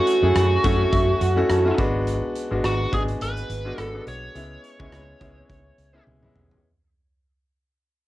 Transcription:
Already playing: grand piano A3 C#4 E4 F#4, lead electric guitar F#4
0.07 closed hi-hat
0.22 fingered electric bass F#2, grand piano A3 C#4 E4 G#4
0.35 fingered electric bass F#2, cross-stick, closed hi-hat
0.63 fingered electric bass F#2, grand piano A3 C#4 E4 F#4 F#5, kick, closed hi-hat
0.92 fingered electric bass F#2, grand piano E5, kick, closed hi-hat
1.21 fingered electric bass F#2, grand piano F#5, closed hi-hat
1.36 grand piano A3 C#4 E4 F#4
1.50 fingered electric bass F#2, grand piano A5, cross-stick, closed hi-hat
1.65 grand piano A3 C#4 E4 F#4
1.78 fingered electric bass G#1, grand piano G#3 B3 D4 F#4 B5, kick, closed hi-hat
2.07 closed hi-hat
2.35 closed hi-hat
2.51 fingered electric bass G#1, grand piano G#3 B3 D4 F#4
2.64 fingered electric bass G#1, lead electric guitar F#4, cross-stick, closed hi-hat
2.92 fingered electric bass G#1, grand piano G#3 B3 D4 G#4, lead electric guitar G#4, kick, closed hi-hat
3.08 closed hi-hat
3.21 fingered electric bass G#1, lead electric guitar B4, closed hi-hat
3.37 closed hi-hat
3.50 fingered electric bass G#1, closed hi-hat
3.65 grand piano G#3 B3 D4 F#4
3.78 fingered electric bass G#1, lead electric guitar A4, cross-stick, closed hi-hat
3.94 grand piano G#3 B3 D4 F#4
4.07 fingered electric bass B1, lead electric guitar C#5, closed hi-hat
4.35 fingered electric bass C#2, grand piano G#3 B3 C#4 E4, closed hi-hat
4.64 closed hi-hat
4.79 fingered electric bass C#2, grand piano G#3 B3 C#4 E4, kick
4.93 fingered electric bass C#2, cross-stick, closed hi-hat
5.21 fingered electric bass C#2, grand piano G#3 B3 C#4 E4, kick, closed hi-hat
5.50 fingered electric bass C#2, kick, closed hi-hat
5.78 fingered electric bass C#2, closed hi-hat
5.93 grand piano G#3 B3 C#4 E4
6.07 fingered electric bass C#2, high tom
6.22 grand piano G#3 B3 C#4 E4, mid tom
6.35 fingered electric bass B1, mid tom
6.51 floor tom

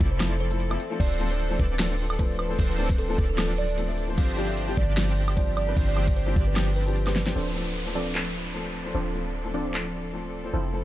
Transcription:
Already playing: string section F3 C4 E4 A4
0.01 808-style bass F1, supersaw synth F3 C4 E4 A4 D5, kick, open hi-hat
0.11 kalimba C5
0.20 grand piano F3 A3 C4 E4 A4, snare, closed hi-hat, high woodblock
0.40 kalimba C5, closed hi-hat
0.50 grand piano F3 A3 C4 E4 A4, closed hi-hat
0.60 closed hi-hat
0.70 grand piano F3 A3 C4 E4 A4, kalimba E5, high woodblock
0.80 string section D4, closed hi-hat
0.90 grand piano F3 A3 C4 D4 A4
1.00 808-style bass D1, supersaw synth F3 C4 D4 A4 C5, kalimba D5, kick, closed hi-hat, crash
1.19 grand piano F3 A3 C4 D4 A4, closed hi-hat
1.31 kalimba C5, closed hi-hat
1.40 closed hi-hat
1.50 grand piano F3 A3 C4 D4 A4
1.59 808-style bass D1, supersaw synth F3 C4 D4 A4 D5, kalimba B4, kick, open hi-hat
1.78 grand piano F3 A3 C4 D4 A4, snare, closed hi-hat, crash
1.99 closed hi-hat
2.10 closed hi-hat, high woodblock
2.18 grand piano F3 A3 C4 D4 A4, kalimba B4, kick, closed hi-hat
2.39 kalimba B4, closed hi-hat, high woodblock
2.49 grand piano F3 A3 C4 D4 C5
2.59 808-style bass D1, supersaw synth F3 C4 D4 A4 C5, kick, closed hi-hat, crash
2.70 kalimba B4
2.78 grand piano F3 A3 C4 D4 A4, closed hi-hat
2.90 kick, closed hi-hat
2.98 kalimba A4, closed hi-hat
3.09 grand piano F3 A3 C4 D4 A4
3.18 808-style bass D1, supersaw synth F3 C4 D4 A4 D5, kick, open hi-hat
3.29 kalimba A4
3.37 grand piano F3 A3 C4 D4 A4, snare, closed hi-hat, crash, high woodblock
3.58 kalimba D5, closed hi-hat
3.69 closed hi-hat
3.77 grand piano F3 A3 C4 D4 A4, closed hi-hat
3.89 kalimba E5
3.98 closed hi-hat
4.08 grand piano F3 A3 C4 D4 C5
4.18 808-style bass G1, supersaw synth F3 C4 D4 G4 C5, string section C4 G4, kalimba F5, kick, closed hi-hat, crash
4.37 grand piano F3 G3 C4 D4 G4, closed hi-hat
4.48 kalimba E5, closed hi-hat
4.57 closed hi-hat
4.67 grand piano F3 G3 C4 D4 G4
4.77 808-style bass G1, supersaw synth F3 C4 D4 G4 D5, kalimba D5, kick, open hi-hat
4.96 grand piano F3 G3 C4 D4 G4, snare, closed hi-hat, crash
5.17 closed hi-hat
5.28 closed hi-hat, high woodblock
5.36 grand piano F3 G3 C4 D4 G4, kalimba D5, kick, closed hi-hat
5.57 kalimba D5, closed hi-hat, high woodblock
5.67 grand piano F3 G3 C4 D4 B4
5.77 808-style bass G1, supersaw synth F3 C4 D4 G4 C5, kick, closed hi-hat, crash
5.88 kalimba D5
5.96 grand piano F3 G3 C4 D4 G4, closed hi-hat, high woodblock
6.07 kick, closed hi-hat
6.17 kalimba C5, closed hi-hat
6.26 grand piano F3 G3 C4 D4 G4
6.36 808-style bass G1, supersaw synth F3 C4 D4 G4 D5, kick, open hi-hat
6.47 kalimba B4
6.55 grand piano F3 G3 C4 D4 G4, snare, closed hi-hat, crash, high woodblock
6.76 kalimba B4, closed hi-hat
6.86 grand piano F3 G3 C4 D4 G4, closed hi-hat
6.96 closed hi-hat
7.06 grand piano F3 G3 C4 D4 G4, kalimba B4, snare, high woodblock
7.16 snare, closed hi-hat
7.26 grand piano F3 G3 C4 D4 G4, snare
7.36 808-style bass D1, supersaw synth F3 C4 D4 A4 C5, string section F3 C4 D4 A4, downlifter
7.55 grand piano F3 A3 C4 D4 A4
7.85 grand piano F3 A3 C4 D4 A4
7.95 supersaw synth F3 C4 D4 A4 D5, open hi-hat
8.14 grand piano F3 A3 C4 D4 A4, clap
8.54 grand piano F3 A3 C4 D4 A4
8.85 grand piano F3 A3 C4 D4 C5
8.95 808-style bass D1, supersaw synth F3 C4 D4 A4 C5
9.14 grand piano F3 A3 C4 D4 A4
9.44 grand piano F3 A3 C4 D4 A4
9.54 supersaw synth F3 C4 D4 A4 D5, open hi-hat
9.73 grand piano F3 A3 C4 D4 A4, clap
10.13 grand piano F3 A3 C4 D4 A4
10.44 grand piano F3 A3 C4 D4 C5
10.54 808-style bass F1, supersaw synth F3 C4 E4 A4 C5, string section F3 E4
10.73 grand piano F3 A3 C4 E4 A4

